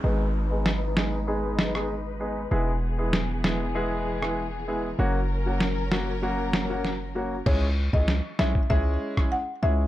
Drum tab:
CC |----------------|----------------|----------------|x---------------|
SD |----o-o---or----|----o-o----r----|----o-o---o-o---|----o-o----r----|
BD |----------------|----------------|----------------|o--o---oo--o----|